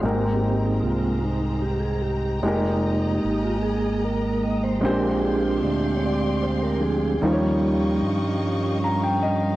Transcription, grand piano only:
\new Staff \with { instrumentName = "Grand piano" } { \time 6/8 \key aes \major \tempo 4. = 50 << { aes,4. r4. | r2. | bes,4. r4. | ees4. r8 bes''16 g''16 ees''8 | } \\ { <aes c' g' bes'>2. | <aes ees' g' bes'>2. | <aes des' d' g' c''>2. | <g ees' f' c'' des''>2. | } >> }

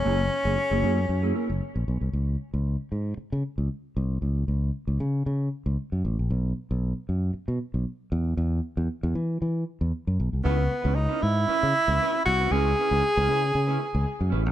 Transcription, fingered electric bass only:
\new Staff \with { instrumentName = "Fingered electric bass" } { \clef bass \time 4/4 \key cis \dorian \tempo 4 = 116 fis,,8 r16 fis,,16 r16 fis,,16 fis,8 fis,8 r16 fis,,16 r16 ais,,16 b,,16 bis,,16 | cis,8 r16 cis,8 r16 gis,8 r16 cis16 r16 cis,16 r8 bis,,8 | cis,8 cis,8 r16 cis,16 cis8 cis8 r16 cis,16 r16 fis,16 a,,16 ais,,16 | b,,8 r16 b,,8 r16 fis,8 r16 b,16 r16 b,,16 r8 e,8 |
e,8 r16 e,16 r16 e,16 e8 e8 r16 e,16 r16 fis,16 b,,16 bis,,16 | cis,8 r16 cis,8 r16 gis,8 r16 cis16 r16 cis,16 r8 bis,,8 | cis,8 r16 cis,16 r16 cis,16 cis8 cis8 r16 cis,16 r16 fis,16 a,,16 ais,,16 | }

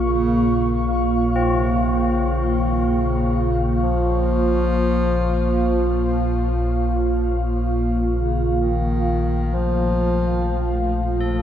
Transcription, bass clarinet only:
\new Staff \with { instrumentName = "Bass clarinet" } { \clef bass \time 4/4 \key bes \minor \tempo 4 = 63 des4 r8 c8 des8 ees8 des4 | f2. r4 | r8 des8 ees4 f4. r8 | }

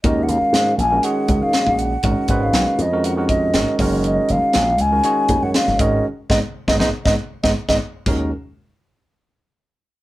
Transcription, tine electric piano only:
\new Staff \with { instrumentName = "Tine electric piano" } { \time 4/4 \key ees \minor \tempo 4 = 120 <ees aes des' ges' bes'>4. r16 <ees aes des' ges' bes'>16 <ees aes des' ges' aes'>4.~ <ees aes des' ges' aes'>16 r16 | <ees aes des' ges' bes'>8 <ees aes des' ges' ces''>4 r16 <ees aes des' ges' bes'>8 <ees aes des' ges' bes'>8. <ees aes des' ges' bes'>8 <ees aes des' ges' bes'>8~ | <ees aes des' ges' bes'>4~ <ees aes des' ges' bes'>16 r8 <ees aes des' ges' bes'>16 <ees aes des' ges' des''>4. <ees aes des' ges' bes'>8 | r8 <aes ces' ees'>16 r8 <aes ces' ees'>16 <aes ces' ees'>16 r16 <aes ces' ees'>16 r8 <aes ces' ees'>16 r16 <aes ces' ees'>16 r8 |
<ees aes des' ges' bes'>8 r2. r8 | }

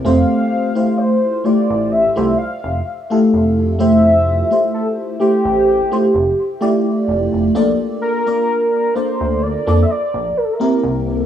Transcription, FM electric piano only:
\new Staff \with { instrumentName = "FM electric piano" } { \time 4/4 \key bes \lydian \tempo 4 = 64 <a c' f' g' c''>8. <a e' f' g' c''>8. <a e' f' g' c''>8. <a e' f' g' c''>16 r8. <a e' f' g' a'>8. | <a e' f' g' c''>8. <a e' f' g' c''>8. <a e' f' g' c''>8. <a e' f' g' c''>16 r8 <a e' f' g' d''>4 | <bes d' f' a' d''>8. <bes d' f' bes' d''>8. <bes d' f' a' d''>8. <bes d' f' a' d''>16 r8. <bes c' e' g' bes'>8. | }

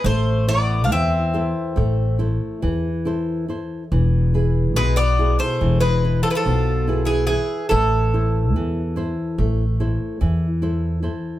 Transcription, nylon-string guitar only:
\new Staff \with { instrumentName = "Nylon-string guitar" } { \time 9/8 \key a \minor \tempo 4. = 47 a8 <e' a' e''>8 e8 <e' a' c''>8 a8 <e' a' c''>8 e8 <e' a' c''>8 <e' a' c''>8 | e8 <e' gis' b'>8 b,8 <e' gis'>8 e8 <e' b'>8 b,8 <e' gis' b'>8 <e' gis' b'>8 | a8 <e' a' c''>8 e8 <e' a' c''>8 a8 <e' a' c''>8 e8 <e' a' c''>8 <e' a' c''>8 | }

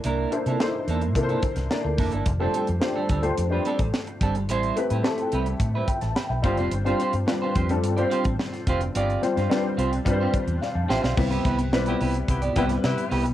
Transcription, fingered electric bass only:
\new Staff \with { instrumentName = "Fingered electric bass" } { \clef bass \time 4/4 \key c \major \tempo 4 = 108 c,8 r16 c16 r8 e,8 c8 r16 c,16 r16 d,16 f,,16 g,,16 | f,,8 r16 f,16 r8 d,8 f,8 r16 a,,16 r8 g,,8 | a,,8 r16 a,16 r8 c,8 a,8 r16 a,,16 r16 b,,16 g,,16 f,,16 | g,,8 r16 g,16 r8 f,8 g,8 r16 a,,16 r8 f,,8 |
g,,8 r16 g,16 r8 c,8 g,8 r16 e,16 r16 f,16 a,,16 b,,16 | c,8 c,8 b,,8 c,8 c,8 c,8 c16 r16 c,16 b,,16 | }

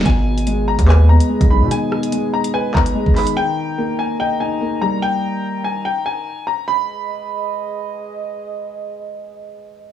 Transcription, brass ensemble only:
\new Staff \with { instrumentName = "Brass ensemble" } { \time 4/4 \key gis \minor \tempo 4 = 145 <gis gis' b' dis''>1~ | <gis gis' b' dis''>1 | <dis dis' ais' ais''>1~ | <dis dis' ais' ais''>1 |
<gis gis' b' dis''>1~ | <gis gis' b' dis''>1 | }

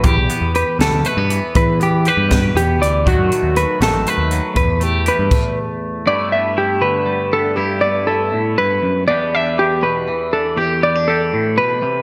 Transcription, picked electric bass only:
\new Staff \with { instrumentName = "Picked electric bass" } { \clef bass \time 6/8 \key e \minor \tempo 4. = 80 e,16 b,,16 r16 e,8 r16 d,16 d,16 r16 g,8 r16 | e4~ e16 g,8. e,8 d,8 | dis,16 fis,16 r16 dis,8 r16 a,,16 a,,16 r16 dis,8 r16 | e,4~ e,16 g,16 r4. |
r2. | r2. | r2. | r2. | }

